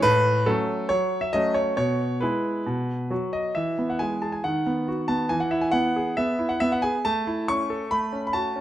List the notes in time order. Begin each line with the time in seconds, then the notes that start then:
0.02 A2 B4
0.46 F#3 A3 C#4 A4
0.89 F#3 C#5
1.21 E5
1.33 F#3 A3 C#4 D#5
1.54 C#5
1.77 B2 C#5
2.21 G#3 E4 B4
2.66 B2
3.10 F#3 F#4
3.33 D#5
3.55 E3 E5
3.79 B3
3.90 F#5
3.99 G#3 G#5
4.22 G#4 A5
4.32 G#5
4.44 D#3 F#5
4.67 B3
4.88 F#4
5.08 B3 A5
5.29 E3 G#5
5.40 F#5
5.51 E4 E5
5.61 G#5
5.71 B3 F#5
5.96 G#4
6.17 B3 E5
6.39 E4
6.49 F#5
6.60 B3 E5
6.72 F#5
6.82 G#4 G#5
7.05 A3 A5
7.27 E4
7.48 C#4 C#6
7.70 A4
7.91 A3 B5
8.13 C#4
8.27 B5
8.33 F#4 A5
8.56 C#4